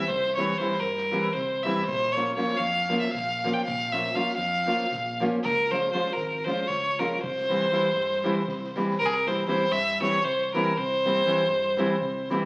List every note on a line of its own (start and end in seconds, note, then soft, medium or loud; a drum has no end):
0.07 0.52 C2 medium
0.07 0.34 C5 loud
0.07 kick medium
0.23 snare soft
0.35 0.52 E3 medium
0.35 0.52 G3 soft
0.35 0.53 C4 soft
0.35 0.53 E4 medium
0.35 0.59 C#5 medium
0.35 snare soft
0.48 snare soft
0.58 0.74 E3 medium
0.58 0.75 G3 medium
0.58 0.75 C4 medium
0.58 0.75 E4 medium
0.58 0.81 C5 medium
0.58 snare soft
0.71 snare soft
0.80 1.13 G2 medium
0.80 1.34 A#4 medium
0.80 snare soft
0.97 snare soft
1.11 1.28 E3 medium
1.11 1.28 G3 medium
1.11 1.28 C4 medium
1.11 1.28 E4 medium
1.11 snare soft
1.33 1.66 C2 loud
1.33 1.64 C5 medium
1.33 kick medium
1.33 snare soft
1.63 1.81 E3 medium
1.63 1.81 G3 medium
1.63 1.82 C4 medium
1.63 1.82 E4 medium
1.63 1.85 E5 medium
1.63 snare soft
1.77 snare soft
1.86 2.31 A#1 medium
1.86 2.14 C5 loud
1.86 kick medium
2.12 2.31 F3 soft
2.12 2.34 C#5 medium
2.16 2.31 A#3 soft
2.16 2.32 C#4 soft
2.16 2.32 F4 medium
2.16 snare soft
2.35 2.52 F3 medium
2.35 2.52 A#3 soft
2.35 2.53 C#4 medium
2.35 2.53 F4 medium
2.35 2.59 C#5 medium
2.35 snare soft
2.50 snare soft
2.57 2.92 F2 medium
2.57 2.99 F5 loud
2.57 snare soft
2.89 3.06 F3 medium
2.89 3.06 A#3 medium
2.89 3.07 C#4 medium
2.89 3.07 F4 medium
2.89 snare soft
3.00 3.12 E5 medium
3.00 snare soft
3.11 3.46 A#1 loud
3.11 3.55 F5 medium
3.11 kick medium
3.15 snare soft
3.44 3.60 F3 medium
3.44 3.60 A#3 medium
3.44 3.61 C#4 medium
3.44 3.61 F4 medium
3.44 snare soft
3.54 3.64 G5 medium
3.64 4.10 A#1 medium
3.64 3.94 F5 loud
3.64 kick medium
3.92 4.09 F3 medium
3.92 4.09 A#3 soft
3.92 4.09 C#4 soft
3.92 4.09 F4 medium
3.92 4.16 E5 medium
3.92 snare soft
4.14 4.30 F3 medium
4.14 4.31 A#3 medium
4.14 4.31 C#4 medium
4.14 4.32 F4 medium
4.14 4.36 F5 loud
4.14 snare soft
4.28 snare soft
4.36 4.70 F2 medium
4.36 5.18 F5 loud
4.36 snare soft
4.66 4.83 F3 medium
4.66 4.84 A#3 soft
4.66 4.84 C#4 medium
4.66 4.85 F4 medium
4.66 snare soft
4.81 snare soft
4.92 5.24 A#1 loud
4.92 kick medium
4.92 snare soft
5.20 5.37 F3 medium
5.20 5.38 A#3 medium
5.20 5.38 C#4 medium
5.20 5.38 F4 medium
5.20 snare soft
5.43 5.88 C#2 medium
5.43 5.72 A#4 loud
5.43 kick medium
5.71 5.87 F3 medium
5.71 5.88 G#3 medium
5.71 5.88 C#4 soft
5.71 5.88 F4 medium
5.71 5.91 C5 medium
5.71 snare soft
5.91 6.09 F3 medium
5.91 6.09 G#3 medium
5.91 6.10 C#4 medium
5.91 6.10 F4 medium
5.91 6.14 C5 loud
5.91 snare soft
6.06 snare soft
6.13 6.49 G#1 medium
6.13 6.46 A#4 medium
6.13 snare soft
6.44 6.63 F3 medium
6.44 6.63 G#3 medium
6.44 6.63 C#4 medium
6.44 6.64 F4 medium
6.44 6.69 C5 medium
6.44 snare soft
6.67 7.02 C#2 loud
6.67 7.00 C#5 medium
6.67 kick medium
6.67 snare soft
6.99 7.16 F3 medium
6.99 7.16 G#3 medium
6.99 7.17 C#4 medium
6.99 7.17 F4 medium
6.99 7.22 A#4 medium
6.99 snare soft
7.22 7.66 C2 medium
7.22 8.74 C5 loud
7.22 kick medium
7.37 snare soft
7.49 7.65 E3 medium
7.49 7.66 G3 medium
7.49 7.66 C4 soft
7.49 7.66 E4 medium
7.49 snare soft
7.62 snare soft
7.72 7.87 E3 medium
7.72 7.88 G3 medium
7.72 7.88 C4 medium
7.72 7.88 E4 medium
7.72 snare soft
7.94 8.26 G2 medium
7.94 snare soft
8.11 snare soft
8.24 8.40 E3 medium
8.24 8.41 G3 medium
8.24 8.41 C4 medium
8.24 8.41 E4 medium
8.47 8.80 C2 medium
8.47 kick medium
8.47 snare soft
8.64 snare soft
8.76 8.93 E3 medium
8.76 8.93 G3 medium
8.76 8.94 C4 medium
8.76 8.94 E4 medium
8.76 snare soft
8.90 snare soft
8.99 9.43 C2 medium
8.99 9.07 A#4 loud
9.06 9.15 G#4 medium
9.13 9.29 A#4 loud
9.26 9.43 E3 medium
9.26 9.43 G3 medium
9.26 9.43 C4 medium
9.26 9.43 E4 medium
9.26 9.47 C5 medium
9.47 9.64 E3 medium
9.47 9.64 G3 medium
9.47 9.65 C4 medium
9.47 9.65 E4 medium
9.47 9.73 C5 loud
9.72 10.04 G2 medium
9.72 10.01 E5 loud
10.00 10.17 E3 medium
10.00 10.17 G3 medium
10.00 10.18 C4 medium
10.00 10.18 E4 medium
10.00 10.25 C#5 loud
10.24 10.57 C2 medium
10.24 10.54 C5 loud
10.54 10.71 E3 medium
10.54 10.71 G3 medium
10.54 10.72 C4 medium
10.54 10.72 E4 medium
10.54 10.79 A#4 medium
10.77 11.20 C2 medium
10.77 12.32 C5 loud
11.05 11.20 E3 soft
11.05 11.21 G3 medium
11.05 11.21 C4 medium
11.05 11.21 E4 medium
11.26 11.42 E3 medium
11.26 11.42 G3 medium
11.26 11.42 C4 medium
11.26 11.43 E4 medium
11.48 11.80 G2 medium
11.77 11.94 E3 medium
11.77 11.95 G3 medium
11.77 11.95 C4 medium
11.77 11.95 E4 medium
12.01 12.33 C2 loud
12.30 12.45 E3 medium
12.30 12.45 G3 medium
12.30 12.45 C4 medium
12.30 12.45 E4 medium